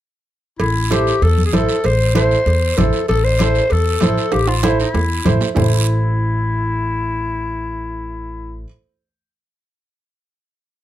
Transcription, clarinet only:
0.59 0.93 E4 medium
0.92 1.24 G4 medium
1.23 1.45 A4 loud
1.46 1.55 G#4 medium
1.53 1.87 A4 loud
1.85 2.15 C5 loud
2.16 2.79 C5 loud
2.77 3.08 A4 medium
3.08 3.25 A4 loud
3.24 3.73 C5 loud
3.72 4.34 A4 loud
4.32 4.50 G4 loud
4.48 4.65 F4 medium
4.63 4.79 E4 medium
4.80 5.37 E4 medium
5.56 8.63 E4 medium

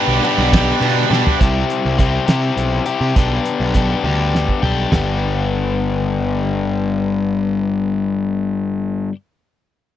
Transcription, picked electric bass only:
0.08 0.19 B1 medium
0.38 0.71 B1 medium
0.81 1.03 B2 loud
1.11 1.22 B2 medium
1.41 1.63 C2 medium
1.85 2.18 C2 medium
2.28 2.50 C3 medium
2.57 2.79 B1 medium
3.01 3.12 C3 medium
3.16 3.38 B1 medium
3.60 3.93 B1 medium
4.04 4.48 D2 medium
4.63 4.85 B1 medium
4.92 9.08 G1 medium

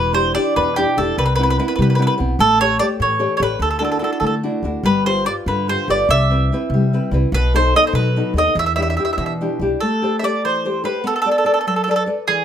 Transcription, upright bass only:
0.00 0.35 E1 medium
0.57 0.83 E2 medium
0.97 1.11 E1 medium
1.18 1.58 C2 medium
1.79 2.05 C3 medium
2.20 2.33 B1 medium
2.39 2.78 A1 medium
3.00 3.26 A2 medium
3.40 3.53 A1 medium
3.59 4.00 D2 medium
4.21 4.48 D3 medium
4.63 4.76 D2 medium
4.83 5.25 G1 medium
5.46 5.74 G2 medium
5.88 6.02 G1 medium
6.09 6.49 C2 medium
6.70 6.97 C3 medium
7.11 7.25 C2 medium
7.32 7.72 B1 medium
7.93 8.20 B2 medium
8.33 8.47 D#2 medium
8.55 8.96 E2 loud
9.18 9.45 E3 medium
9.60 9.74 B1 medium

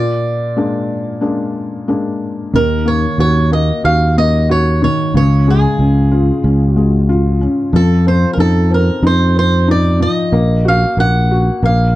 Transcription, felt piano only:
0.00 2.50 A#2 medium
0.56 1.20 G#3 soft
0.56 1.20 A#3 soft
0.56 1.20 D4 soft
1.21 1.86 G#3 soft
1.21 1.86 A#3 soft
1.21 1.86 D4 soft
1.88 2.52 G#3 soft
1.88 2.52 A#3 soft
1.88 2.52 D4 soft
2.54 4.80 D#3 medium
2.86 3.50 A#3 soft
3.19 3.83 F#4 soft
3.52 4.16 A#3 soft
3.84 4.48 F#4 soft
4.17 5.12 A#3 soft
4.49 5.12 F#4 soft
4.82 5.13 D#3 medium
5.15 7.69 C#3 medium
5.48 6.73 G#3 soft
5.79 6.42 C#4 soft
6.12 7.08 F4 soft
6.44 7.40 C#4 soft
6.76 7.70 G#3 soft
7.09 7.72 F4 soft
7.41 7.72 C#4 soft
7.73 9.98 F3 medium
8.07 8.69 C4 soft
8.39 9.01 D#4 soft
8.71 9.35 C4 soft
9.03 9.67 D#4 soft
9.36 10.30 C4 soft
9.68 10.31 D#4 medium
10.00 10.31 F3 soft
10.32 10.96 A#3 medium
10.65 11.30 F#4 soft
10.98 11.61 A#3 soft
11.31 11.62 F#4 soft
11.63 11.96 A#3 medium

